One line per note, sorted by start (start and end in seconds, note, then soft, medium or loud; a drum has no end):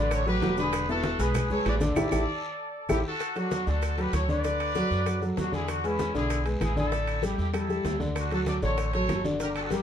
0.00 0.39 A1 loud
0.00 0.21 D3 medium
0.00 0.21 D4 medium
0.00 0.11 B4 medium
0.00 0.11 D5 medium
0.00 0.22 D5 medium
0.11 0.27 A4 medium
0.11 0.26 C#5 medium
0.11 high bongo medium
0.11 high conga soft
0.11 high timbale medium
0.11 long guiro medium
0.11 claves medium
0.11 maracas medium
0.26 0.39 F#3 medium
0.26 0.39 F#4 medium
0.26 0.56 G4 medium
0.26 0.40 A4 medium
0.26 0.56 B4 medium
0.26 high conga soft
0.26 maracas soft
0.42 1.14 E1 medium
0.42 0.55 F#3 medium
0.42 0.55 F#4 medium
0.42 0.55 A4 medium
0.42 high bongo soft
0.42 low bongo medium
0.42 high conga medium
0.42 high timbale medium
0.42 low timbale medium
0.42 short guiro medium
0.42 maracas soft
0.57 0.83 D3 medium
0.57 0.83 D4 medium
0.57 0.87 G#4 medium
0.57 0.87 B4 medium
0.57 0.84 D5 medium
0.57 high bongo soft
0.57 high conga soft
0.57 short guiro medium
0.57 maracas medium
0.73 high bongo medium
0.73 high conga soft
0.73 high timbale loud
0.73 long guiro medium
0.73 claves medium
0.73 maracas medium
0.89 1.14 B3 medium
0.89 1.14 E4 medium
0.89 1.18 F#4 medium
0.89 1.18 A4 loud
0.89 1.15 B4 medium
0.89 high bongo soft
0.89 high conga soft
0.89 maracas soft
1.03 high bongo medium
1.03 high conga loud
1.03 high timbale medium
1.03 short guiro medium
1.03 maracas soft
1.19 1.62 B1 medium
1.19 1.45 G#3 medium
1.19 1.45 G#4 medium
1.19 1.51 G#4 medium
1.19 1.45 B4 medium
1.19 1.51 B4 medium
1.19 high bongo soft
1.19 high conga soft
1.19 high timbale medium
1.19 short guiro medium
1.19 maracas medium
1.35 high bongo medium
1.35 high conga soft
1.35 low conga medium
1.35 high timbale medium
1.35 long guiro medium
1.35 claves medium
1.35 maracas medium
1.50 1.76 G#3 medium
1.50 1.76 G#4 medium
1.50 1.65 A4 medium
1.50 1.76 B4 medium
1.50 1.65 C#5 loud
1.50 high conga soft
1.50 low conga medium
1.50 maracas soft
1.65 1.94 A1 medium
1.65 1.74 B4 medium
1.65 1.74 D5 medium
1.65 high bongo soft
1.65 low bongo medium
1.65 high conga soft
1.65 high timbale medium
1.65 low timbale medium
1.65 short guiro medium
1.65 claves medium
1.65 maracas soft
1.80 1.93 D3 medium
1.80 1.94 D4 medium
1.80 2.86 A4 medium
1.80 1.94 D5 medium
1.80 2.86 D5 medium
1.80 high bongo soft
1.80 high conga medium
1.80 high timbale medium
1.80 short guiro medium
1.80 maracas medium
1.96 2.08 A1 medium
1.96 2.07 E4 loud
1.96 2.07 G4 loud
1.96 2.06 A4 medium
1.96 low bongo loud
1.96 high conga loud
1.96 high timbale loud
1.96 long guiro loud
1.96 claves loud
1.96 maracas loud
2.12 2.24 A1 loud
2.12 2.22 E4 medium
2.12 2.22 G4 medium
2.12 2.22 A4 medium
2.12 low bongo loud
2.12 high conga medium
2.12 high timbale medium
2.12 long guiro medium
2.12 claves loud
2.12 maracas loud
2.89 3.01 A1 medium
2.89 2.99 E4 medium
2.89 2.98 E4 medium
2.89 2.99 G4 loud
2.89 2.98 G4 medium
2.89 2.99 A4 loud
2.89 low bongo loud
2.89 high conga medium
2.89 high timbale medium
2.89 long guiro loud
2.89 claves loud
2.89 maracas loud
3.07 3.35 F#4 medium
3.07 3.35 A4 loud
3.20 high bongo medium
3.20 high conga soft
3.20 high timbale medium
3.20 long guiro medium
3.20 claves medium
3.20 maracas medium
3.36 3.61 F#3 medium
3.36 3.66 D4 medium
3.36 3.61 F#4 medium
3.36 3.66 F#4 medium
3.36 3.62 A4 medium
3.36 high conga soft
3.36 high timbale medium
3.36 maracas soft
3.51 high bongo medium
3.51 high conga loud
3.51 high timbale medium
3.51 short guiro medium
3.51 maracas medium
3.67 4.10 D2 medium
3.67 3.92 D3 medium
3.67 3.92 D4 medium
3.67 3.99 F#4 medium
3.67 3.98 A4 medium
3.67 3.93 D5 medium
3.67 short guiro medium
3.67 maracas soft
3.82 high bongo medium
3.82 high conga soft
3.82 high timbale medium
3.82 long guiro medium
3.82 claves medium
3.82 maracas medium
3.97 4.23 F#3 medium
3.97 4.23 F#4 medium
3.97 4.14 G4 medium
3.97 4.24 A4 medium
3.97 4.14 B4 medium
3.97 high conga soft
3.97 high timbale medium
3.97 maracas soft
4.13 4.85 D2 medium
4.13 4.28 A4 medium
4.13 4.28 C#5 medium
4.13 high bongo medium
4.13 low bongo medium
4.13 high conga medium
4.13 high timbale medium
4.13 short guiro medium
4.13 claves medium
4.13 maracas medium
4.29 4.42 D3 medium
4.29 4.42 D4 medium
4.29 5.22 B4 medium
4.29 4.42 D5 medium
4.29 5.22 D5 loud
4.29 high conga medium
4.29 short guiro medium
4.29 maracas soft
4.44 4.70 D3 medium
4.44 4.70 D4 medium
4.44 4.70 D5 medium
4.44 high bongo medium
4.44 high timbale medium
4.44 long guiro medium
4.44 maracas medium
4.60 high conga soft
4.60 high timbale medium
4.60 claves medium
4.60 maracas soft
4.75 5.01 F#3 medium
4.75 5.01 F#4 medium
4.75 5.01 A4 medium
4.75 high bongo medium
4.75 high conga medium
4.75 high timbale medium
4.75 short guiro medium
4.75 maracas medium
4.91 5.34 F#2 medium
4.91 high bongo soft
4.91 high conga soft
4.91 short guiro medium
4.91 maracas soft
5.06 5.19 F#3 medium
5.06 5.19 F#4 medium
5.06 5.19 A4 medium
5.06 high bongo medium
5.06 high conga soft
5.06 high timbale medium
5.06 claves medium
5.06 maracas medium
5.21 5.47 F#3 medium
5.21 5.47 F#4 medium
5.21 5.47 A4 medium
5.21 high bongo soft
5.21 high conga soft
5.21 maracas soft
5.37 6.09 E2 medium
5.37 5.52 D4 medium
5.37 5.52 F#4 medium
5.37 high bongo medium
5.37 low bongo medium
5.37 high conga medium
5.37 high timbale medium
5.37 low timbale medium
5.37 short guiro medium
5.37 maracas medium
5.52 5.78 D3 medium
5.52 5.78 D4 medium
5.52 5.68 E4 medium
5.52 5.68 G#4 medium
5.52 5.78 D5 medium
5.52 high bongo soft
5.52 high conga medium
5.52 short guiro medium
5.52 maracas soft
5.68 5.83 D4 medium
5.68 5.83 F#4 medium
5.68 high bongo medium
5.68 high conga soft
5.68 high timbale medium
5.68 long guiro medium
5.68 claves medium
5.68 maracas medium
5.83 6.09 G#3 medium
5.83 6.16 C#4 medium
5.83 6.15 E4 medium
5.83 6.09 G#4 medium
5.83 6.10 B4 medium
5.83 high conga soft
5.83 high timbale medium
5.83 maracas soft
5.99 high bongo medium
5.99 high conga medium
5.99 high timbale medium
5.99 short guiro medium
5.99 maracas medium
6.14 6.58 B1 medium
6.14 6.40 D3 medium
6.14 6.40 D4 medium
6.14 6.44 E4 medium
6.14 6.44 G#4 medium
6.14 6.41 D5 medium
6.14 high conga soft
6.14 short guiro medium
6.14 maracas soft
6.30 high bongo medium
6.30 high conga soft
6.30 high timbale medium
6.30 long guiro medium
6.30 claves medium
6.30 maracas medium
6.45 6.71 G#3 medium
6.45 6.71 G#4 medium
6.45 6.71 B4 medium
6.45 high conga soft
6.45 high timbale medium
6.45 maracas soft
6.61 7.33 A1 medium
6.61 6.77 E4 medium
6.61 6.76 G#4 medium
6.61 high bongo medium
6.61 low bongo medium
6.61 high conga medium
6.61 high timbale medium
6.61 short guiro medium
6.61 claves medium
6.61 maracas medium
6.76 6.89 D3 medium
6.76 6.89 D4 medium
6.76 7.21 E4 medium
6.76 7.21 A4 loud
6.76 6.90 D5 medium
6.76 high conga medium
6.76 short guiro medium
6.76 maracas soft
6.92 7.17 D3 medium
6.92 7.18 D4 medium
6.92 7.18 D5 medium
6.92 high bongo medium
6.92 high conga soft
6.92 high timbale medium
6.92 long guiro medium
6.92 maracas medium
7.07 high conga soft
7.07 high timbale medium
7.07 claves medium
7.07 maracas soft
7.22 7.49 G3 medium
7.22 7.39 E4 medium
7.22 7.49 G4 medium
7.22 7.38 G4 medium
7.22 7.49 A4 medium
7.22 high bongo medium
7.22 high conga medium
7.22 high timbale medium
7.22 short guiro medium
7.22 maracas medium
7.38 7.82 E2 medium
7.38 7.47 E4 medium
7.38 7.46 G4 medium
7.38 high bongo soft
7.38 high conga soft
7.38 short guiro medium
7.38 maracas soft
7.53 7.66 G3 medium
7.53 7.98 E4 medium
7.53 7.67 G4 medium
7.53 7.67 A4 medium
7.53 7.98 A4 medium
7.53 high bongo medium
7.53 high conga soft
7.53 high timbale medium
7.53 claves medium
7.53 maracas medium
7.69 7.95 G3 medium
7.69 7.95 G4 medium
7.69 7.95 A4 medium
7.69 high bongo soft
7.69 high conga soft
7.69 maracas soft
7.84 8.57 D2 medium
7.84 high bongo medium
7.84 low bongo medium
7.84 high conga medium
7.84 high timbale medium
7.84 low timbale medium
7.84 short guiro medium
7.84 maracas medium
8.00 8.25 D3 medium
8.00 8.26 D4 medium
8.00 8.26 D5 medium
8.00 high bongo soft
8.00 high conga medium
8.00 short guiro medium
8.00 maracas soft
8.15 8.31 D4 medium
8.15 8.31 F#4 medium
8.15 high bongo medium
8.15 high conga soft
8.15 high timbale medium
8.15 long guiro medium
8.15 claves medium
8.15 maracas medium
8.31 8.57 F#3 medium
8.31 8.57 F#4 medium
8.31 8.40 F#4 medium
8.31 8.57 A4 medium
8.31 8.39 A4 medium
8.31 high conga soft
8.31 high timbale medium
8.31 maracas soft
8.46 8.55 A4 medium
8.46 8.55 D5 medium
8.46 high bongo medium
8.46 high conga medium
8.46 high timbale medium
8.46 short guiro medium
8.46 maracas medium
8.62 9.06 A1 medium
8.62 8.88 D3 medium
8.62 8.88 D4 medium
8.62 8.92 A4 medium
8.62 8.88 C#5 medium
8.62 8.92 C#5 medium
8.62 short guiro medium
8.62 maracas soft
8.78 high bongo medium
8.78 high conga soft
8.78 high timbale medium
8.78 long guiro medium
8.78 claves medium
8.78 maracas medium
8.93 9.19 F#3 medium
8.93 9.20 F#4 medium
8.93 9.23 A4 medium
8.93 9.20 A4 medium
8.93 9.22 C#5 loud
8.93 high conga soft
8.93 high timbale medium
8.93 maracas soft
9.09 9.81 G1 medium
9.09 high bongo medium
9.09 low bongo medium
9.09 high conga medium
9.09 high timbale medium
9.09 low timbale medium
9.09 short guiro medium
9.09 claves medium
9.09 maracas medium
9.24 9.37 D3 medium
9.24 9.38 D4 medium
9.24 9.38 D5 medium
9.24 high conga medium
9.24 short guiro medium
9.24 maracas soft
9.40 9.65 D3 medium
9.40 9.66 D4 medium
9.40 9.48 G4 medium
9.40 9.48 A#4 loud
9.40 9.66 D5 medium
9.40 high bongo medium
9.40 high conga soft
9.40 high timbale medium
9.40 long guiro medium
9.40 maracas medium
9.55 9.58 A4 loud
9.55 high conga soft
9.55 high timbale medium
9.55 claves medium
9.55 maracas soft
9.60 9.64 G4 medium
9.60 9.71 A4 medium
9.64 9.71 F#4 medium
9.71 9.82 G3 medium
9.71 9.82 E4 medium
9.71 9.82 G4 medium
9.71 9.82 A#4 medium
9.71 high bongo medium
9.71 high conga medium
9.71 high timbale medium
9.71 short guiro medium
9.71 maracas medium